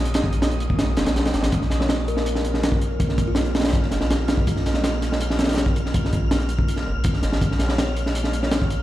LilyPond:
<<
  \new Staff \with { instrumentName = "Synth texture" } { \time 4/4 \key bes \minor \tempo 4 = 163 ees'''1 | f'''1~ | f'''1~ | f'''1~ |
f'''1~ | f'''1 | }
  \new Staff \with { instrumentName = "Kalimba" } { \time 4/4 \key bes \minor r1 | r8. des''16 des''16 r16 bes'16 bes'16 r2 | r8. f'4. r4. r16 | r1 |
r1 | r8. des''16 des''16 r4. des''8 r8. | }
  \new Staff \with { instrumentName = "Sub bass" } { \clef bass \time 4/4 \key bes \minor bes,,8 bes,,2 f,,16 bes,,8. aes,,8 | bes,,1~ | bes,,8 bes,,2 f,,16 bes,,4~ bes,,16 | bes,,1~ |
bes,,8 bes,,2 f,,16 bes,,8. aes,,8 | bes,,1 | }
  \new DrumStaff \with { instrumentName = "Drums" } \drummode { \time 4/4 hh16 <hh sn>16 bd16 hh16 <hh sn>16 hh16 hh16 bd16 <hh sn>8 <hh sn>16 <hh sn>16 <hh sn>16 <hh sn>16 <hh sn>16 <hh sn>16 | <hh bd>16 sn16 <hh sn>16 sn16 <hh sn>8 hh16 sn16 hh16 sn16 hh16 sn16 <hh sn>16 bd16 hh8 | <hh bd>16 sn16 <hh bd>8 <hh sn>16 hh16 <hh sn>32 <hh sn>32 <hh sn>32 <hh sn>32 <hh bd>16 sn16 <hh sn>16 sn16 <hh sn>8 <hh sn>16 bd16 | <hh bd>16 sn16 <hh sn>16 sn16 <hh sn>8 <hh sn>16 sn16 hh16 sn16 <hh sn>32 <hh sn>32 <hh sn>32 <hh sn>32 <hh sn>16 bd16 hh16 sn16 |
<hh bd>16 sn16 <hh bd>8 <hh sn>16 hh16 hh16 bd16 hh16 sn8. <hh bd>16 sn16 <hh sn>16 sn16 | <hh bd>16 sn16 <hh sn>16 sn16 <hh sn>8 hh16 sn16 hh16 sn16 hh16 sn16 <hh sn>16 bd16 hh8 | }
>>